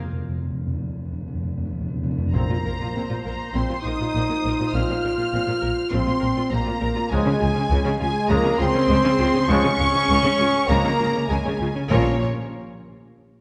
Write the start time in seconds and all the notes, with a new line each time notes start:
0.05 F2
0.12 F2
0.21 F2
0.28 F2
0.37 F2
0.44 F2
0.52 F2
0.60 F2
0.67 F2
0.75 F2
0.82 F2
0.90 F2
0.97 F2
1.05 F2
1.12 F2
1.20 F2
1.28 F2
1.35 F2
1.43 F2
1.50 F2
1.58 F2
1.65 F2
1.73 F2
1.81 F2
1.88 F2
1.96 F2
2.03 F2
2.11 F2
2.18 F2
2.26 F2
2.33 A#1 A#2 F3 A#3 C4 C5 A#5
2.49 A#2 F4
2.65 A#1 A#2 A#4
2.80 A#2 F4
2.94 A#1 A#2 C4
3.10 A#2 F4
3.24 A#1 A#2 A#3 A#4 A#5
3.53 A#1 A#2 F3 C4 C6
3.69 A#2 F4
3.81 A#1 A#2 D#4 D#6
3.86 A#4
4.00 A#2 F4
4.14 A#1 A#2 C4
4.29 A#2 F4
4.44 A#1 A#2 A#4
4.59 A#2 F4
4.73 A#1 A#2 F3 C4 F4 F6
4.89 A#2 F4
5.04 A#1 A#2 A#4
5.18 A#2 F4
5.33 A#1 A#2 C4
5.47 A#2 F4
5.61 A#1 A#2 A#4
5.91 A#1 A#2 F3 C4 C6
6.06 A#2 F4
6.19 A#1 A#2 A#4
6.36 A#2 F4
6.49 A#1 A#2 A#3 C4 A#5
6.65 A#2 F4
6.80 A#1 A#2 A#4
6.95 A#2 F4
7.10 C#2 C#3 F3 G#3 G#4 G#5
7.25 C#3 C#4
7.39 C#2 C#3 F4
7.54 C#3 C#4
7.68 C#2 C#3 G#3
7.84 C#3 C#4
7.98 C#2 C#3 G#3 F4 G#5
8.29 C#2 C#3 F3 G#3 A#3 A#5
8.44 C#3 C#4
8.57 C#2 C#3 C4 F4 C6
8.74 C#3 C#4
8.89 C#2 C#3 G#3
9.04 C#3 C#4
9.18 C#2 C#3 F4
9.34 C#3 C#4
9.48 C#2 C#3 F3 G#3 C#4 C#6
9.64 C#3 C#4
9.79 C#2 C#3 F4
9.94 C#3 C#4
10.09 C#2 C#3 G#3
10.24 C#3 C#4
10.39 C#2 C#3 F4
10.67 C#2 C#3 G#3 A#3 A#5
10.72 F3
10.83 C#3 C#4
10.99 C#2 C#3 F4
11.14 C#3 C#4
11.27 C#2 C#3 G#3 G#5
11.44 C#3 C#4
11.59 C#2 C#3 F4
11.75 C#3 C#4
11.89 A#1 A#2 F3 A#3 C#4 F4 A#4 C#5